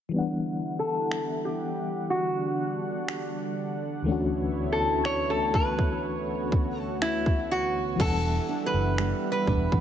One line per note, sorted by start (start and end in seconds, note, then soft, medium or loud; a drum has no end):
0.09 4.00 E3 medium
0.09 4.02 G3 medium
0.13 7.96 D3 medium
0.13 4.03 G3 medium
0.13 4.03 B3 medium
0.13 4.04 D4 medium
0.13 2.08 E4 medium
0.13 4.03 F#5 medium
0.18 4.05 F#5 medium
0.79 1.46 A4 medium
1.11 finger snap loud
1.45 2.06 G4 medium
2.10 4.04 D4 medium
2.10 3.54 F#4 medium
3.08 finger snap loud
4.02 7.94 D2 medium
4.02 7.95 E3 medium
4.02 7.96 A3 medium
4.06 7.96 A3 medium
4.06 7.96 B3 medium
4.06 7.97 C#4 medium
4.06 7.98 D4 medium
4.06 6.01 E4 medium
4.06 7.96 C#5 medium
4.12 7.99 F#4 medium
4.72 5.06 A4 medium
5.05 5.30 C#5 loud
5.05 finger snap loud
5.30 5.55 A4 medium
5.54 6.80 B4 medium
5.54 kick medium
5.79 kick medium
6.04 7.98 F#4 medium
6.52 kick medium
6.80 7.47 A4 medium
7.02 7.52 E4 loud
7.02 finger snap loud
7.26 kick medium
7.51 8.02 F#4 medium
7.96 9.80 E3 medium
7.96 9.80 G3 medium
7.96 kick loud
8.00 8.38 E1 loud
8.00 9.80 E3 medium
8.00 9.80 G3 medium
8.00 9.80 B3 medium
8.00 9.80 D4 medium
8.00 8.62 A4 loud
8.00 9.80 E5 medium
8.00 9.80 F#5 medium
8.00 crash medium
8.05 9.80 F#5 medium
8.49 9.47 D4 medium
8.66 9.31 B4 medium
8.74 9.12 F#1 medium
8.98 9.80 G3 medium
8.98 finger snap loud
9.32 9.80 B4 medium
9.47 9.66 E1 medium
9.47 9.80 D4 medium
9.47 kick medium
9.72 9.80 E2 medium
9.72 kick medium